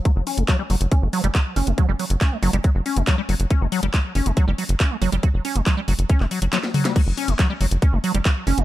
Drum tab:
CC |----------------|----------------|----------------|----------------|
HH |x-oxx-oxx-oxx-ox|x-oxx-oxx-oxx-ox|x-oxx-oxx-oxx-ox|x-oxx-oxx-oxx-ox|
CP |----x-------x---|----x-------x---|----x-------x---|----x----x--x---|
SD |----------------|----------------|----------------|------------oo-o|
T2 |----------------|----------------|----------------|--------------o-|
BD |o---o---o---o---|o---o---o---o---|o---o---o---o---|o---o---o-------|

CC |x---------------|
HH |x-oxx-oxx-oxx-ox|
CP |----x-------x---|
SD |----------------|
T2 |----------------|
BD |o---o---o---o---|